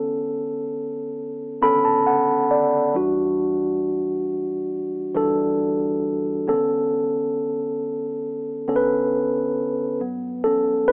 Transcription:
Already playing: D3 B3 C#4 A4
1.62 C#3 B3 C#4 A4 B5
1.68 D3
1.85 A5
2.07 F#5
2.51 D5
2.94 E3 G3 D4 F#4
5.15 E3 G3 D4 A4
6.47 C#3 B3 C#4 A4
6.54 D3
8.67 D3 B3 C#4 A4
8.76 B4
10.00 G2 F#3 B3
10.44 C#4 A4
10.88 B4

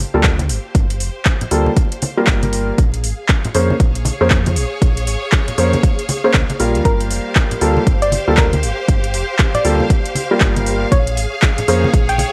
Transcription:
Already playing: G4 C5 F5
0.14 D2 G3 A#3 F4 A4
0.24 kick, clap, closed hi-hat
0.39 closed hi-hat, high conga
0.49 G1, open hi-hat
0.75 G1, kick, closed hi-hat
0.90 closed hi-hat
1.00 F1, open hi-hat
1.25 kick, clap, closed hi-hat
1.41 closed hi-hat, low conga
1.51 D2 G3 A#3 F4 A4, open hi-hat
1.66 high conga
1.77 kick, closed hi-hat
1.92 closed hi-hat
2.02 open hi-hat, high conga
2.17 G3 A#3 F4 A#4
2.27 G1, kick, clap, closed hi-hat
2.43 closed hi-hat, high conga
2.53 open hi-hat
2.78 A#1 G#4, kick, closed hi-hat
2.94 closed hi-hat
3.04 G#1, open hi-hat
3.25 C#5, kick, clap, closed hi-hat
3.45 closed hi-hat, low conga
3.55 F2 A#3 C#4 G#4 C5, open hi-hat
3.70 high conga
3.80 A#1, kick, closed hi-hat
3.95 closed hi-hat
4.05 open hi-hat, high conga
4.21 F2 A#3 C#4 G#4 C5
4.30 kick, clap, closed hi-hat
4.46 closed hi-hat, high conga
4.56 A#1, open hi-hat
4.82 A#1, kick, closed hi-hat
4.97 closed hi-hat
5.07 G#1, open hi-hat
5.32 kick, clap, closed hi-hat
5.48 closed hi-hat, low conga
5.58 F2 A#3 C#4 G#4 C5, open hi-hat
5.73 closed hi-hat, high conga
5.83 kick, closed hi-hat
5.99 closed hi-hat
6.09 open hi-hat, high conga
6.24 A#3 C#4 G#4 C5
6.34 C#2, kick, clap, closed hi-hat
6.50 closed hi-hat, high conga
6.60 A#1 G3 A#3 F4 A#4, open hi-hat
6.75 D#2, closed hi-hat
6.85 G1 G4 A#4, kick, closed hi-hat
7.00 C5, closed hi-hat
7.10 F1, open hi-hat
7.35 kick, clap, closed hi-hat
7.51 closed hi-hat, low conga
7.61 D2 G3 A#3 F4 A4, open hi-hat
7.77 high conga
7.87 G1, kick, closed hi-hat
8.02 D5, closed hi-hat
8.12 open hi-hat, high conga
8.28 D2 G3 A#3 F4 A4
8.37 A#4, kick, clap, closed hi-hat
8.53 closed hi-hat, high conga
8.63 G1, open hi-hat
8.88 G1, kick, closed hi-hat
9.04 closed hi-hat
9.14 F1, open hi-hat
9.39 kick, clap, closed hi-hat
9.55 D5, closed hi-hat, low conga
9.65 D2 G3 A#3 F4 A4, open hi-hat
9.80 high conga
9.90 kick, closed hi-hat
10.06 closed hi-hat
10.15 open hi-hat, high conga
10.31 G3 A#3 F4 A#4
10.40 G1, kick, clap, closed hi-hat
10.56 closed hi-hat, high conga
10.66 open hi-hat
10.92 A#1 G#4 C#5, kick, closed hi-hat
11.07 closed hi-hat
11.17 G#1, open hi-hat
11.42 C#5, kick, clap, closed hi-hat
11.58 closed hi-hat, low conga
11.68 F2 A#3 C#4 G#4 C5, open hi-hat
11.84 high conga
11.94 A#1, kick, closed hi-hat
12.09 G5, closed hi-hat
12.18 open hi-hat, high conga

